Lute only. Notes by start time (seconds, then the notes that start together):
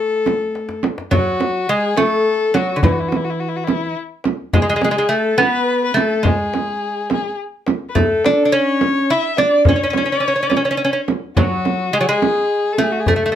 Already playing: A3
1.11 F#3
1.69 G#3
1.97 A3
2.54 F#3
2.76 D3
2.84 E3
4.54 G#3
4.62 G#3
4.70 G#3
4.76 G#3
4.84 G#3
4.91 G#3
4.98 G#3
5.09 A3
5.38 B3
5.94 A3
6.23 G#3
7.95 A3
8.26 D4
8.45 D4
8.52 C#4
9.10 E4
9.38 D4
9.69 C#4
9.76 C#4
9.83 C#4
9.90 C#4
9.97 C#4
10.06 C#4
10.12 C#4
10.20 C#4
10.28 C#4
10.36 C#4
10.43 C#4
10.50 C#4
10.57 C#4
10.65 C#4
10.71 C#4
10.77 C#4
10.85 C#4
10.93 C#4
11.37 F#3
11.93 G#3
12.01 F#3
12.09 G#3
12.78 A3
13.08 A3
13.16 A3
13.26 A3
13.32 A3